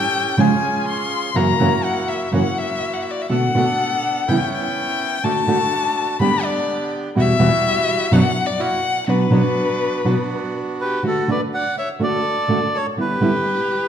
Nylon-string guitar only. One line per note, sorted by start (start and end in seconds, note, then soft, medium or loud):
0.37 0.47 C#3 medium
0.37 0.47 F3 medium
0.37 0.47 G#3 medium
0.37 0.47 C#4 medium
0.37 0.47 F4 medium
1.34 1.52 F#2 medium
1.34 1.52 C#3 medium
1.34 1.52 E3 medium
1.34 1.52 A#3 medium
1.34 1.52 C#4 medium
1.34 1.52 F#4 medium
1.59 1.68 F#2 medium
1.59 1.69 C#3 medium
1.59 1.68 E3 medium
1.59 1.69 A#3 medium
1.59 1.69 C#4 medium
1.59 1.69 F#4 medium
2.31 2.41 F#2 medium
2.31 2.41 C#3 medium
2.31 2.42 E3 medium
2.31 2.42 A#3 medium
2.31 2.42 C#4 medium
2.31 2.42 F#4 medium
3.29 3.47 B2 medium
3.29 3.47 D3 medium
3.29 3.47 A3 medium
3.29 3.48 B3 medium
3.29 3.47 F#4 medium
3.54 3.64 B2 medium
3.54 3.64 D3 medium
3.54 3.64 A3 medium
3.54 3.64 B3 medium
3.54 3.64 F#4 medium
4.29 4.37 C#3 medium
4.29 4.37 E3 medium
4.29 4.37 G3 medium
4.29 4.37 B3 medium
4.29 4.38 E4 medium
5.24 5.41 D3 medium
5.24 5.41 A3 medium
5.24 5.41 D4 medium
5.24 5.41 F#4 medium
5.47 5.57 D3 medium
5.47 5.57 A3 medium
5.47 5.57 D4 medium
5.47 5.57 F#4 medium
6.20 6.29 D3 medium
6.20 6.29 G3 medium
6.20 6.29 B3 medium
6.20 6.30 G4 medium
7.15 7.32 E2 medium
7.15 7.33 B2 medium
7.15 7.33 E3 medium
7.15 7.33 G3 medium
7.15 7.33 B3 medium
7.15 7.33 F#4 medium
7.39 7.48 E2 medium
7.39 7.48 B2 loud
7.39 7.49 E3 medium
7.39 7.48 G3 medium
7.39 7.48 B3 medium
7.39 7.49 F#4 loud
8.11 8.20 F#2 medium
8.11 8.20 B2 medium
8.11 8.21 F#3 medium
8.11 8.21 B3 medium
8.11 8.21 D4 loud
8.11 8.21 F#4 loud
9.07 9.24 B2 medium
9.07 9.25 F#3 medium
9.07 9.24 B3 medium
9.07 9.25 D4 medium
9.07 9.25 F#4 medium
9.30 9.40 B2 medium
9.30 9.40 F#3 medium
9.30 9.40 B3 medium
9.30 9.41 D4 loud
9.30 9.41 F#4 loud
10.05 10.14 B2 medium
10.05 10.14 F#3 medium
10.05 10.14 B3 medium
10.05 10.14 D4 medium
10.05 10.15 F#4 medium
11.03 11.20 D3 medium
11.03 11.21 A3 medium
11.03 11.21 D4 medium
11.03 11.21 F#4 medium
11.28 11.37 D3 medium
11.28 11.37 A3 medium
11.28 11.38 D4 medium
11.28 11.38 F#4 medium
12.00 12.18 D3 medium
12.00 12.17 A3 medium
12.00 12.18 D4 medium
12.00 12.18 F#4 medium
12.48 12.58 D3 medium
12.48 12.58 A3 medium
12.48 12.59 D4 medium
12.48 12.59 F#4 medium
12.97 13.15 D3 medium
12.97 13.15 G3 soft
12.97 13.15 B3 medium
12.97 13.15 E4 medium
13.21 13.31 D3 medium
13.21 13.31 G3 medium
13.21 13.31 B3 medium
13.21 13.32 E4 medium